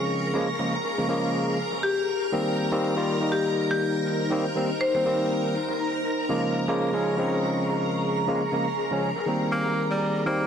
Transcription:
Already playing: tine electric piano C#3 F3 G#3 C4, ambient pad G#4 A#5 C#6, string machine A#4 A#5
0.10 closed hi-hat
0.24 closed hi-hat
0.34 tine electric piano C#3 F3 G#3 A#3
0.59 tine electric piano C#3 F3 G#3 A#3, snare, closed hi-hat
0.74 snare, closed hi-hat
0.84 closed hi-hat
0.98 tine electric piano C#3 F3 G#3 A#3
1.08 tine electric piano C#3 F3 G#3 A#3, closed hi-hat
1.23 closed hi-hat
1.58 ambient pad D#4, closed hi-hat
1.72 snare
1.83 marimba G4
2.05 ambient pad C5 A#5, closed hi-hat
2.22 closed hi-hat
2.32 tine electric piano D#3 G3 A#3 C4, closed hi-hat
2.57 closed hi-hat
2.71 tine electric piano D#3 G3 A#3 C4, snare
2.96 tine electric piano D#3 G3 A#3 F4
3.07 closed hi-hat
3.20 tine electric piano D#3 G3 A#3 D#4
3.32 marimba G4
3.46 snare
3.57 open hi-hat
3.71 marimba G4, snare
3.81 closed hi-hat
4.06 closed hi-hat
4.31 tine electric piano D#3 G3 A#3 C4
4.55 tine electric piano D#3 G3 A#3 C4, closed hi-hat
4.81 marimba C5, closed hi-hat
4.94 tine electric piano D#3 G3 A#3 C4, marimba C5
5.05 tine electric piano D#3 G3 A#3 C4, closed hi-hat
5.20 closed hi-hat
5.30 closed hi-hat
5.55 ambient pad G#4, closed hi-hat
5.68 ambient pad C#6, snare
5.80 closed hi-hat
6.05 closed hi-hat
6.19 closed hi-hat
6.29 tine electric piano C#3 F3 G#3 A#3, closed hi-hat
6.55 closed hi-hat
6.68 tine electric piano C#3 F3 G#3 A#3, snare
6.79 closed hi-hat
6.93 tine electric piano C#3 F3 G#3 C#4
7.04 closed hi-hat
7.17 tine electric piano C#3 F3 G#3 C4
7.29 closed hi-hat
7.43 snare
7.54 open hi-hat
7.68 snare
7.78 closed hi-hat
8.02 closed hi-hat
8.18 closed hi-hat
8.27 tine electric piano C#3 F3 G#3 A#3, closed hi-hat
8.52 tine electric piano C#3 F3 G#3 A#3, closed hi-hat
8.78 closed hi-hat
8.91 tine electric piano C#3 F3 G#3 C#4
9.02 closed hi-hat
9.16 snare
9.26 tine electric piano D#3 G3 A#3 C4, closed hi-hat
9.52 tenor saxophone A#3, ambient pad D#4, string machine A#4 A#5, closed hi-hat
9.66 snare
9.75 ambient pad C5, closed hi-hat
9.91 tenor saxophone G3
10.01 closed hi-hat
10.26 tine electric piano D#3 G3 A#3 C4, tenor saxophone A#3, closed hi-hat

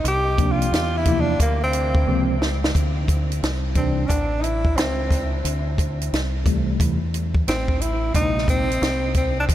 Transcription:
0.04 fingered electric bass C2, tenor saxophone G4, closed hi-hat
0.37 tine electric piano C3 F3 A#3 D4, kick, closed hi-hat
0.52 tenor saxophone F4
0.62 closed hi-hat
0.72 fingered electric bass E2, snare, closed hi-hat
0.97 tenor saxophone E4
1.05 tine electric piano C3 F3 A#3 E4, kick, closed hi-hat
1.21 tenor saxophone D4
1.39 fingered electric bass D2, tenor saxophone A#3, kick, closed hi-hat
1.64 tenor saxophone C4
1.73 closed hi-hat
1.95 kick
2.06 fingered electric bass C#2, tine electric piano C3 F3 A#3 C4
2.42 snare
2.64 snare
2.75 fingered electric bass D2, kick, closed hi-hat
3.08 kick, closed hi-hat
3.32 closed hi-hat
3.43 fingered electric bass C2, snare, closed hi-hat
3.75 tine electric piano C3 E3 G3 D4, tenor saxophone C4, kick, closed hi-hat
4.06 fingered electric bass A1, tenor saxophone C#4 D4, kick, closed hi-hat
4.39 tenor saxophone D#4 E4
4.44 closed hi-hat
4.65 kick
4.76 fingered electric bass C#2, tenor saxophone C4, snare, closed hi-hat
5.11 kick, closed hi-hat
5.44 fingered electric bass D2, closed hi-hat
5.78 kick, closed hi-hat
6.01 closed hi-hat
6.13 fingered electric bass C2, snare, closed hi-hat
6.44 tine electric piano C3 E3 G3 A3, kick, closed hi-hat
6.80 fingered electric bass E2, kick, closed hi-hat
7.14 closed hi-hat
7.35 kick
7.47 fingered electric bass A1, tenor saxophone C4, snare, closed hi-hat
7.68 kick
7.81 tenor saxophone E4, closed hi-hat
8.14 fingered electric bass A#1, tine electric piano C3 G#3 A#3 D4, tenor saxophone D#4, kick, closed hi-hat
8.23 tine electric piano D#4
8.38 snare
8.48 tenor saxophone C4, kick, closed hi-hat
8.71 closed hi-hat
8.82 fingered electric bass C2, snare, closed hi-hat
9.14 tenor saxophone C4, kick, closed hi-hat
9.40 tenor saxophone D4
9.49 fingered electric bass D#2, kick, closed hi-hat

